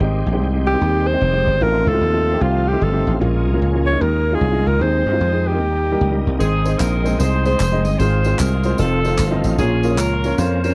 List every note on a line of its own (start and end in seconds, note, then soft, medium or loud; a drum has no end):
0.00 0.22 G#1 medium
0.00 0.62 G#2 medium
0.00 3.17 D#3 medium
0.00 1.57 G3 medium
0.00 1.59 G#3 medium
0.00 0.27 G#3 medium
0.00 1.59 C4 medium
0.00 0.28 C4 medium
0.00 0.28 D#4 medium
0.00 1.59 G4 medium
0.00 0.28 G4 medium
0.26 0.41 A#1 medium
0.33 0.46 G#3 medium
0.33 0.46 C4 medium
0.33 0.47 D#4 medium
0.33 0.47 G4 medium
0.41 0.75 C2 medium
0.53 0.69 G#3 medium
0.53 0.69 C4 medium
0.53 0.70 D#4 medium
0.53 0.70 G4 medium
0.67 1.08 G4 medium
0.73 1.06 G#3 medium
0.73 1.06 C4 medium
0.73 1.06 D#4 medium
0.73 0.77 F#4 medium
0.79 1.15 D#2 medium
0.79 1.09 G4 medium
1.07 1.64 C5 loud
1.13 1.26 G#3 medium
1.13 1.27 C4 medium
1.13 1.27 D#4 medium
1.13 1.27 G4 medium
1.21 1.43 F1 medium
1.32 1.54 G#3 medium
1.32 1.54 C4 medium
1.32 1.55 D#4 medium
1.32 1.55 G4 medium
1.47 1.59 G1 medium
1.60 1.82 A1 medium
1.60 2.22 A2 medium
1.60 3.19 F3 medium
1.60 1.88 A3 medium
1.60 3.19 A3 medium
1.60 1.88 C4 medium
1.60 3.19 C4 medium
1.60 1.88 D#4 medium
1.60 3.19 F4 medium
1.60 1.88 F4 medium
1.60 1.89 A#4 loud
1.87 1.98 C#2 medium
1.87 2.43 A4 loud
1.93 2.06 A3 medium
1.93 2.06 C4 medium
1.93 2.07 D#4 medium
1.93 2.07 F4 medium
2.01 2.35 D#2 medium
2.12 2.29 A3 medium
2.12 2.29 C4 medium
2.12 2.30 D#4 medium
2.12 2.30 F4 medium
2.33 2.65 A3 medium
2.33 2.66 C4 medium
2.33 2.66 D#4 medium
2.33 2.66 G4 medium
2.41 2.75 C2 medium
2.41 2.70 F4 medium
2.68 2.86 A3 medium
2.68 2.85 G4 medium
2.72 2.86 C4 medium
2.72 2.86 D#4 medium
2.72 2.87 G4 medium
2.81 3.03 G1 medium
2.81 3.15 A4 medium
2.91 3.14 A3 medium
2.91 3.14 C4 medium
2.91 3.15 D#4 medium
2.91 3.15 G4 medium
3.07 3.19 A1 medium
3.20 3.47 A#1 loud
3.20 3.82 A#2 medium
3.20 4.00 F3 medium
3.20 3.47 G#3 medium
3.20 4.78 G#3 medium
3.20 3.47 A#3 medium
3.20 4.79 A#3 medium
3.20 3.47 C#4 medium
3.20 4.79 C#4 medium
3.20 3.48 F4 medium
3.20 4.00 G#4 medium
3.47 3.59 C2 medium
3.53 3.67 G#3 medium
3.53 3.67 A#3 medium
3.53 3.67 C#4 medium
3.53 3.67 F4 medium
3.62 3.95 C#2 medium
3.73 3.89 G#3 medium
3.73 3.89 A#3 medium
3.73 3.90 C#4 medium
3.73 3.90 F4 medium
3.87 4.03 C#5 loud
3.92 4.00 G#3 medium
3.92 4.00 A#3 medium
3.92 4.00 C#4 medium
3.92 4.00 D#4 medium
4.00 4.35 D#2 loud
4.00 4.62 D#3 medium
4.00 4.80 D#3 medium
4.00 4.80 F4 medium
4.00 4.36 A#4 medium
4.32 4.46 G#3 medium
4.32 4.46 C#4 medium
4.32 4.46 D#4 medium
4.32 4.46 F4 medium
4.32 4.68 G#4 medium
4.41 4.63 C2 medium
4.51 4.74 G#3 medium
4.51 4.74 C#4 medium
4.51 4.74 D#4 medium
4.51 4.74 F4 medium
4.67 4.79 C#2 medium
4.67 4.84 A#4 medium
4.79 5.02 D#2 medium
4.79 5.42 D#3 medium
4.79 5.07 G#3 medium
4.79 5.59 G#3 medium
4.79 5.07 C4 medium
4.79 5.59 C4 medium
4.79 6.38 D#4 medium
4.79 5.07 D#4 medium
4.79 5.07 G#4 medium
4.79 5.49 C5 medium
5.06 5.18 G2 medium
5.12 5.26 G#3 medium
5.12 5.26 C4 medium
5.12 5.26 D#4 medium
5.12 5.26 F4 medium
5.21 5.61 F2 medium
5.32 5.49 G#3 medium
5.32 5.49 C4 medium
5.32 5.49 D#4 medium
5.32 5.49 G#4 medium
5.47 6.26 G4 medium
5.52 5.60 G#3 medium
5.52 5.60 C4 medium
5.52 5.60 D#4 medium
5.52 5.60 A#4 medium
5.59 5.95 D#2 medium
5.59 6.21 D#3 medium
5.59 6.40 G3 medium
5.59 6.39 A#3 medium
5.92 6.06 G3 medium
5.92 6.06 A#3 medium
5.92 6.06 D#4 medium
5.92 6.06 G4 medium
6.01 6.22 C#2 medium
6.11 6.33 G3 medium
6.11 6.34 A#3 medium
6.11 6.34 D#4 medium
6.11 6.34 G4 medium
6.27 6.38 C2 medium
6.39 6.74 G#1 medium
6.39 7.01 G#2 medium
6.39 6.58 G#3 medium
6.39 8.77 G#3 medium
6.39 6.59 C4 medium
6.39 7.16 C4 medium
6.39 9.55 C4 medium
6.39 6.59 D#4 medium
6.39 6.78 D#4 medium
6.39 7.98 D#4 medium
6.39 6.59 G#4 medium
6.39 6.77 G#4 loud
6.39 6.59 C5 medium
6.39 tambourine medium
6.64 6.92 G#3 medium
6.64 6.92 C4 medium
6.64 6.92 D#4 medium
6.64 6.92 G#4 medium
6.64 6.92 C5 medium
6.64 tambourine medium
6.79 7.14 A#1 medium
6.79 7.18 D#4 medium
6.79 7.19 A#4 loud
6.79 clap loud
6.79 tambourine loud
7.03 7.15 G#3 medium
7.03 7.16 C4 medium
7.03 7.15 D#4 medium
7.03 7.16 G#4 medium
7.03 7.16 C5 medium
7.03 tambourine soft
7.19 7.54 C2 medium
7.19 7.38 G#3 medium
7.19 7.38 C4 medium
7.19 7.38 D#4 medium
7.19 7.44 D#4 medium
7.19 7.38 G#4 medium
7.19 7.44 G#4 medium
7.19 7.44 C5 loud
7.19 7.39 C5 medium
7.19 tambourine medium
7.45 7.62 G#3 medium
7.45 7.62 C4 medium
7.45 7.62 D#4 medium
7.45 7.95 D#4 medium
7.45 7.95 G#4 medium
7.45 7.63 G#4 medium
7.45 7.82 C5 loud
7.45 7.63 C5 medium
7.45 tambourine soft
7.60 7.85 F1 medium
7.60 clap medium
7.60 tambourine medium
7.72 7.94 G#3 medium
7.72 7.94 C4 medium
7.72 7.94 D#4 medium
7.72 7.94 G#4 medium
7.72 7.94 D#5 medium
7.85 7.97 G1 medium
7.85 7.99 D#5 loud
7.85 tambourine medium
7.99 8.33 G#1 loud
7.99 8.61 G#2 medium
7.99 8.19 G#3 medium
7.99 8.19 C4 medium
7.99 8.38 F4 medium
7.99 9.57 F4 medium
7.99 8.19 F4 medium
7.99 8.75 G#4 medium
7.99 8.19 G#4 medium
7.99 8.39 C5 loud
7.99 8.19 C5 medium
7.99 tambourine medium
8.24 8.52 G#3 medium
8.24 8.52 C4 medium
8.24 8.52 F4 medium
8.24 8.52 G#4 medium
8.24 8.52 C5 medium
8.24 tambourine medium
8.39 8.73 C2 medium
8.39 8.76 F4 medium
8.39 8.79 A#4 loud
8.39 clap loud
8.39 tambourine loud
8.63 8.75 G#3 medium
8.63 8.75 C4 medium
8.63 8.75 F4 medium
8.63 8.75 G#4 medium
8.63 8.76 C5 medium
8.63 tambourine medium
8.78 9.13 F1 loud
8.78 9.58 D#3 medium
8.78 10.74 F3 medium
8.78 9.58 A3 medium
8.78 8.98 C4 medium
8.78 9.55 C4 medium
8.78 8.98 D#4 medium
8.78 9.55 D#4 medium
8.78 8.98 F4 medium
8.78 9.40 A4 loud
8.78 8.98 A4 medium
8.78 8.98 C5 medium
8.78 tambourine medium
9.04 9.21 C4 medium
9.04 9.22 D#4 medium
9.04 9.22 F4 medium
9.04 9.22 A4 medium
9.04 9.22 C5 medium
9.04 tambourine soft
9.18 9.40 G1 medium
9.18 clap medium
9.18 tambourine medium
9.31 9.53 C4 medium
9.31 9.53 D#4 medium
9.31 9.53 F4 medium
9.31 9.53 A4 medium
9.31 9.53 D#5 loud
9.44 9.56 A1 medium
9.44 tambourine medium
9.58 9.98 A#1 loud
9.58 10.20 A#2 medium
9.58 9.77 A#3 medium
9.58 10.74 A#3 medium
9.58 9.77 C#4 medium
9.58 10.74 C#4 medium
9.58 9.97 C#4 medium
9.58 9.78 F4 medium
9.58 9.97 F4 medium
9.58 9.96 G#4 loud
9.58 9.78 A#4 medium
9.58 9.78 C#5 medium
9.58 tambourine medium
9.83 10.10 A#3 medium
9.83 10.11 C#4 medium
9.83 10.11 F4 medium
9.83 10.11 A#4 medium
9.83 9.88 C5 medium
9.83 tambourine medium
9.90 10.13 C#5 medium
9.98 10.32 C#2 medium
9.98 10.74 C#4 medium
9.98 10.38 F4 medium
9.98 10.38 A#4 loud
9.98 clap medium
9.98 tambourine loud
10.24 10.35 A#3 medium
10.24 10.35 C#4 medium
10.24 10.35 F4 medium
10.24 10.35 A#4 medium
10.24 10.35 C#5 medium
10.24 tambourine soft
10.37 10.72 F2 medium
10.37 10.57 A#3 medium
10.37 10.57 C#4 medium
10.37 10.57 F4 medium
10.37 10.62 F4 medium
10.37 10.57 A#4 medium
10.37 10.63 C5 loud
10.37 10.57 C#5 medium
10.37 tambourine medium
10.64 10.74 A#3 medium
10.64 10.74 C#4 medium
10.64 10.74 F4 medium
10.64 10.74 A#4 medium
10.64 10.74 C5 medium
10.64 10.74 C#5 medium
10.64 tambourine soft